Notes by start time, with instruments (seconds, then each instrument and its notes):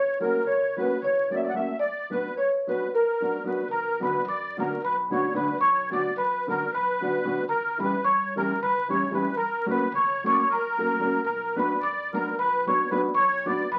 Already playing: upright bass F#1, accordion C#5, marimba C#5
0.20 nylon-string guitar F#3 A#3 C#4 F#4, marimba A#4, accordion A#4
0.44 upright bass C#2, accordion C#5, marimba C#5
0.76 nylon-string guitar F#3 A#3 C#4 F#4, accordion B4, marimba B4
1.02 upright bass F#1, accordion C#5, marimba C#5
1.30 nylon-string guitar F#3 A#3 C#4 F#4, accordion D5
1.34 marimba D5 E5, accordion E5
1.43 accordion D5, marimba D5
1.48 accordion F#5, marimba F#5
1.53 nylon-string guitar F#3 A#3 C#4 F#4, accordion E5
1.58 marimba E5
1.79 marimba D5, accordion D5
2.10 nylon-string guitar F#3 B3 D4 F#4, accordion B4, marimba B4
2.37 accordion C#5, marimba C#5
2.67 nylon-string guitar F#3 B3 D4 F#4, accordion B4, marimba B4
2.94 accordion A#4, marimba A#4
3.20 nylon-string guitar F#3 B3 D4 F#4
3.44 nylon-string guitar F#3 B3 D4 F#4, accordion B4, marimba B4
3.68 upright bass B1, accordion A#4, marimba A#5
4.00 nylon-string guitar D3 F#3 B3 D4 F#4, accordion B4, marimba B5
4.25 upright bass F#2, accordion D5, marimba D6
4.57 nylon-string guitar D3 F#3 B3 D4 F#4, accordion A#4, marimba A#5
4.82 upright bass B1, accordion B4, marimba B5
5.09 nylon-string guitar D3 F#3 B3 D4 F#4, accordion C#5, marimba C#6
5.33 nylon-string guitar D3 F#3 B3 D4 F#4, accordion B4, marimba B5
5.58 upright bass B1, accordion C#5, marimba C#6
5.90 nylon-string guitar D3 F#3 B3 D4 F#4, accordion D5, marimba D6
6.16 upright bass F#2, accordion B4, marimba B5
6.47 nylon-string guitar D3 F#3 B3 D4 F#4, accordion A#4, marimba A#5
6.72 upright bass B1, accordion B4, marimba B5
7.01 nylon-string guitar D3 F#3 B3 D4 F#4
7.24 nylon-string guitar D3 F#3 B3 D4 F#4
7.48 upright bass C#2, accordion A#4, marimba A#5
7.78 nylon-string guitar E3 G3 C#4 E4 G4, marimba B5
7.83 accordion B4
8.04 upright bass G2, accordion C#5, marimba C#6
8.36 nylon-string guitar E3 G3 C#4 E4 G4, accordion A#4, marimba A#5
8.60 upright bass C#2, accordion B4, marimba B5
8.88 nylon-string guitar E3 G3 C#4 E4 G4, accordion C#5, marimba C#6
9.11 nylon-string guitar E3 G3 C#4 E4 G4, accordion B4
9.15 marimba B5
9.36 upright bass F#2, accordion A#4, marimba A#5
9.66 nylon-string guitar F#3 A#3 C#4 F#4 A#4
9.70 accordion B4, marimba B5
9.92 upright bass C#2, accordion C#5, marimba C#6
10.23 nylon-string guitar F#3 A#3 C#4 F#4 A#4, accordion C#5, marimba C#6
10.31 accordion D5, marimba D6
10.37 accordion C#5, marimba C#6
10.49 upright bass F#2, accordion A#4, marimba A#5
10.78 nylon-string guitar F#3 A#3 C#4 F#4 A#4
10.99 nylon-string guitar F#3 A#3 C#4 F#4 A#4
11.24 upright bass B1, accordion A#4, marimba A#5
11.56 nylon-string guitar F#3 B3 D4 F#4 B4, accordion B4, marimba B5
11.81 upright bass F#2, accordion D5, marimba D6
12.13 nylon-string guitar F#3 B3 D4 F#4 B4, accordion A#4, marimba A#5
12.39 upright bass B1, accordion B4, marimba B5
12.66 nylon-string guitar F#3 B3 D4 F#4 B4, accordion C#5, marimba C#6
12.91 nylon-string guitar F#3 B3 D4 F#4 B4, accordion B4, marimba B5
13.14 upright bass B1, accordion C#5, marimba C#6
13.45 nylon-string guitar F#3 B3 D4 F#4 B4, accordion D5, marimba D6
13.72 upright bass F#2, accordion B4, marimba B5